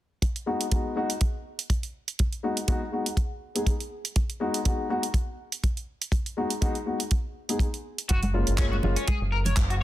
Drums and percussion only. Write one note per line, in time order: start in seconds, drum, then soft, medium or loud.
0.22 kick loud
0.22 closed hi-hat medium
0.36 closed hi-hat soft
0.61 closed hi-hat soft
0.71 kick loud
0.71 closed hi-hat medium
1.10 closed hi-hat soft
1.21 kick loud
1.21 closed hi-hat medium
1.59 closed hi-hat soft
1.70 kick loud
1.70 closed hi-hat medium
1.83 closed hi-hat soft
2.08 closed hi-hat soft
2.19 kick loud
2.19 closed hi-hat medium
2.33 closed hi-hat soft
2.57 closed hi-hat soft
2.68 kick loud
2.68 closed hi-hat medium
3.06 closed hi-hat soft
3.17 kick loud
3.17 closed hi-hat medium
3.56 closed hi-hat soft
3.66 kick loud
3.66 closed hi-hat medium
3.80 closed hi-hat soft
4.05 closed hi-hat soft
4.16 kick loud
4.16 closed hi-hat medium
4.30 closed hi-hat soft
4.54 closed hi-hat soft
4.65 kick loud
4.65 closed hi-hat medium
5.03 closed hi-hat soft
5.14 kick loud
5.14 closed hi-hat medium
5.52 closed hi-hat soft
5.64 kick loud
5.64 closed hi-hat medium
5.77 closed hi-hat soft
6.02 closed hi-hat soft
6.12 kick loud
6.12 closed hi-hat medium
6.26 closed hi-hat soft
6.50 closed hi-hat soft
6.62 kick loud
6.62 closed hi-hat medium
6.75 closed hi-hat soft
7.00 closed hi-hat soft
7.11 kick loud
7.11 closed hi-hat medium
7.49 closed hi-hat soft
7.59 kick loud
7.59 closed hi-hat medium
7.74 closed hi-hat soft
7.98 closed hi-hat soft
8.09 kick loud
8.09 closed hi-hat medium
8.23 closed hi-hat soft
8.23 high conga medium
8.47 closed hi-hat soft
8.58 kick loud
8.58 clap loud
8.58 closed hi-hat medium
8.73 high conga medium
8.83 low conga medium
8.96 closed hi-hat soft
9.08 kick loud
9.08 closed hi-hat medium
9.08 high conga medium
9.45 closed hi-hat soft
9.45 high conga medium
9.45 low conga medium
9.56 kick loud
9.56 clap loud
9.56 closed hi-hat medium
9.70 closed hi-hat soft